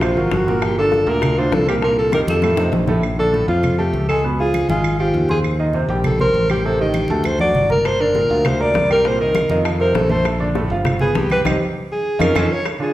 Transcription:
Already playing: A#1 F4
0.01 C3 C4 C5, high bongo, high conga, claves
0.17 G#1 F#3 F#4 A#4, high bongo, high conga
0.31 G1 F#4, high bongo, low bongo, high conga
0.47 A#2 A#3 A#4, high bongo, high conga
0.62 G4, high bongo, high conga, claves
0.78 D3 D4 F4 A4, high conga
0.92 high bongo, high conga
1.07 D2 A#2 A#3 A#4, high conga
1.22 high bongo, high conga, low conga, claves
1.38 D3 D4 F4 C5, high conga
1.52 C2 A4, high bongo, low bongo, high conga
1.68 A#2 A#3 G4 A#4, claves
1.82 A#2 A#3 A#4, high bongo, high conga
1.98 A4, high conga
2.12 D#3 D#4 G4 A#4, high bongo, high conga, claves
2.27 F2 A4, high conga
2.42 A2 A3 A4, low bongo, high conga, claves
2.57 C3 C4 D#4, low bongo, high conga
2.72 A#1, low bongo, high conga
2.87 A2 A3 A4, low bongo, high conga
3.03 high conga, claves
3.18 D3 D4 A4 D5, high conga
3.33 A2 A3 A4, high conga
3.48 F2 F3 F4 F5, high conga
3.63 high conga, low conga, claves
3.78 A3 G4 A4 A5, high conga
3.93 C#2, high conga
4.09 G#3 G#4 A4 G#5, claves
4.24 B2 B3 B4, high conga
4.39 F3 F4 G#4 F5, high conga
4.54 high conga, claves
4.68 G#1 G#3 F4 G#4 G#5, high conga
4.84 high conga, claves
4.99 F3 F4 G4 F5, high conga
5.14 D#2, high conga
5.29 C4 G#4 C5 C6, high conga
5.44 high conga, claves
5.59 D#3 D#4 D#5, high conga
5.73 C3 C4 C5, high conga
5.89 A#1 G3 G4 G5, high conga
6.04 A4, high conga, low conga, claves
6.20 C4 A#4 C5 C6, high conga, low conga
6.34 A1, high conga
6.49 G3 G4 G5, high conga, claves
6.64 C3 C4 A4 C5, high conga
6.79 D#3 D#4 G4 D#5, high conga
6.94 high conga, claves
7.08 D2 A3 A4 A5, high conga
7.24 C5, high conga, claves
7.39 F#3 F#4 D5 F#5, high conga
7.54 G1, low conga
7.69 A#3 A#4 A#5, low conga
7.85 C5, high bongo, high conga, claves
8.00 D3 D4 A#4 D5, high conga
8.15 A#2 A#3 A#4, high bongo, high conga
8.30 D2 F3 F4 F5, high conga
8.45 C5, high bongo, high conga, low conga, claves
8.60 A#3 A#4 D5 A#5, high conga
8.74 C2, high bongo, low bongo, high conga
8.90 G3 G4 A#4 G5, claves
9.05 A#2 A#3 A#4 C5, high bongo, high conga
9.20 D#3 D#4 A#4 D#5, high conga
9.35 high bongo, high conga, claves
9.49 F2 D#3 D#4 D#5, high bongo, high conga
9.64 high bongo, high conga, claves
9.80 C3 C4 A#4 C5, high bongo, high conga
9.94 A#1 A4, high bongo, low bongo, high conga
10.09 A3 A4 C5 A5, high bongo, high conga
10.25 high bongo, high conga, claves
10.40 D3 D4 D5, high conga
10.55 A2 A3 A4, high bongo, high conga
10.70 G1 F3 F4 F5, high conga
10.85 high bongo, high conga, low conga, claves
10.99 B3 G#4 B4 B5, high conga, low conga
11.15 C2 G4, high bongo, low bongo, high conga
11.30 G3 G4 B4 G5, high conga, claves
11.45 C2 C4 D#4 G4, low bongo, high conga, claves
11.92 G#4
12.19 F2 C#4 D#4 F4 A#4, low bongo, high conga, claves
12.35 F2 C#4 D#4 F4 A4, low bongo, high conga, claves
12.52 C#5
12.65 high bongo, high conga, claves
12.79 D3 D4 F4 G#4, high conga

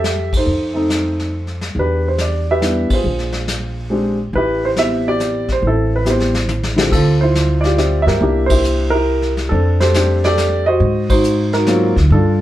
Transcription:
Already playing: F2 G4 A4 E5
0.04 snare, hi-hat pedal
0.33 D#4, kick, ride
0.37 A4 C5
0.46 F2, brush sweep
0.74 A3 C4 D#4
0.90 snare, hi-hat pedal
1.19 snare
1.47 snare
1.61 snare
1.75 E2 D4, brush sweep, kick
1.79 G4 B4
2.08 C5
2.18 D5, snare, hi-hat pedal
2.51 G4 B4 E5
2.60 G3 B3 D4 E4, snare, hi-hat pedal
2.90 F4 C5, muted upright bass stroke, kick, ride
2.95 G#4
3.04 A#1, brush sweep
3.19 snare
3.32 snare
3.48 snare, hi-hat pedal
3.90 G#3 C4 D4 G4
4.33 A1 G4 B4, brush sweep, kick
4.37 E4
4.65 C5
4.76 B3 C4 E4 G4 E5, snare, hi-hat pedal
5.08 G4 D5
5.20 snare, hi-hat pedal
5.48 C5, kick, snare
5.62 A1, brush sweep, kick
5.67 C4 E4 A4
5.96 B4
6.05 B3 C4 E4 G4, snare, hi-hat pedal
6.10 E4 C5
6.20 snare
6.34 snare
6.49 hi-hat pedal, high tom
6.63 snare
6.76 D3 C4 E4 F4 G4, snare
6.92 D2 C4 F4 A4, brush sweep, kick, crash
7.21 E4 F4 C5
7.35 snare, hi-hat pedal
7.61 D5, snare
7.65 F4 G4
7.77 C4 F4 G4 E5, snare, hi-hat pedal
8.02 E5
8.06 G2 G4 A#4, snare
8.20 C2 A#3 D4 E4 G4, brush sweep, kick
8.46 C5, kick, ride
8.51 E4 G4
8.64 hi-hat pedal
8.90 G4 A#4
8.95 E4
9.22 snare
9.37 snare
9.49 F2 C4 D4 A4, brush sweep, kick
9.80 G4 A4 C5, snare
9.94 A3 C4 D4 G4, snare, hi-hat pedal
10.24 G4 A4 D5, snare
10.38 snare, hi-hat pedal
10.66 F#4 C5 D#5
10.80 G#2, brush sweep, kick
11.10 D#4 F#4 C5, kick, ride
11.24 hi-hat pedal
11.53 D#4 F#4 A#4, snare
11.67 F#3 A#3 C4 F4, snare, hi-hat pedal
11.96 D2, kick, snare
12.10 G2 D4 A4, brush sweep, kick
12.14 F4

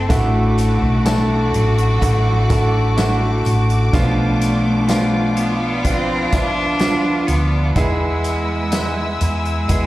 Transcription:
Already playing: A3 C4 E4 G4 G#4 A4 E5
0.09 A1 A2 A3 D4 E4 F#4 A4 F#5 D6, kick, closed hi-hat, tambourine
0.58 closed hi-hat, tambourine
0.82 B1
1.05 A3 D4 E4 A4, snare, closed hi-hat, tambourine
1.54 A1 F#3, closed hi-hat
1.78 closed hi-hat
2.01 A1 A3 D4 E4 F#4, kick, closed hi-hat, tambourine
2.49 A3 D4 E4 A4, kick, closed hi-hat, tambourine
2.97 A3 D4 E4 F#4, snare, closed hi-hat, tambourine
3.45 A1, closed hi-hat, tambourine
3.70 closed hi-hat
3.93 B1 B2 F3 A3 B3 D4 F4 B4 D5, kick, closed hi-hat, tambourine
4.41 closed hi-hat, tambourine
4.88 F3 B3 D4 F4, snare, closed hi-hat, tambourine
5.36 B3, closed hi-hat, tambourine
5.84 F3 C4 D4 F4 B4, kick, closed hi-hat, tambourine
6.32 F3 B3 D4 E5, kick, closed hi-hat, tambourine
6.79 D2 F3 B3 D4 F4, snare, closed hi-hat, tambourine
7.27 D2 B3, closed hi-hat, tambourine
7.75 E2 E3 G#3 B3 E4 G#4 E5 G#5 E6, kick, closed hi-hat, tambourine
8.24 closed hi-hat, tambourine
8.72 G#3 B3 E4 B4, snare, closed hi-hat, tambourine
9.20 E2 G#3, closed hi-hat, tambourine
9.45 closed hi-hat
9.68 E2 G#3 B3 E4 G#4, kick, closed hi-hat, tambourine

